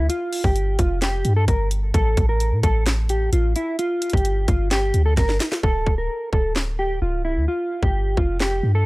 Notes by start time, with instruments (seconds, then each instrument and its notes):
0.09 clean electric guitar F4, closed hi-hat
0.33 open hi-hat
0.44 808-style bass G1, clean electric guitar G4, kick
0.56 closed hi-hat
0.79 808-style bass F1, clean electric guitar F4, kick, closed hi-hat
1.02 clean electric guitar G4, snare, clap, closed hi-hat
1.25 808-style bass G2, closed hi-hat
1.36 clean electric guitar A4
1.48 808-style bass G1, clean electric guitar A#4, kick, closed hi-hat
1.71 closed hi-hat
1.94 808-style bass A1, clean electric guitar A4, kick, closed hi-hat
2.17 808-style bass A1, kick, closed hi-hat
2.29 clean electric guitar A#4
2.40 closed hi-hat
2.52 808-style bass A2
2.63 808-style bass A1, clean electric guitar A4, kick, closed hi-hat
2.86 snare, clap, closed hi-hat
3.09 clean electric guitar G4, closed hi-hat
3.33 808-style bass A1, clean electric guitar F4, closed hi-hat
3.56 clean electric guitar E4, closed hi-hat
3.79 clean electric guitar F4, closed hi-hat
4.02 closed hi-hat, open hi-hat
4.10 808-style bass G1, kick, closed hi-hat
4.14 clean electric guitar G4, closed hi-hat
4.25 closed hi-hat
4.48 808-style bass G1, clean electric guitar F4, kick, closed hi-hat
4.71 clean electric guitar G4, snare, clap, closed hi-hat
4.94 808-style bass D2, closed hi-hat
5.06 clean electric guitar A4
5.17 808-style bass G1, clean electric guitar A#4, kick, snare, closed hi-hat
5.29 snare
5.40 snare, closed hi-hat
5.52 snare
5.63 808-style bass D1, clean electric guitar A4, kick
5.87 808-style bass D1, kick
5.98 clean electric guitar A#4
6.33 808-style bass D1, clean electric guitar A4, kick
6.56 snare, clap
6.79 clean electric guitar G4
7.02 808-style bass C#1, clean electric guitar F4
7.25 clean electric guitar E4
7.37 808-style bass D2
7.48 clean electric guitar F4
7.83 808-style bass G1, clean electric guitar G4, kick
8.17 808-style bass F1, clean electric guitar F4, kick
8.40 clean electric guitar G4, snare, clap
8.63 808-style bass G2
8.75 clean electric guitar A4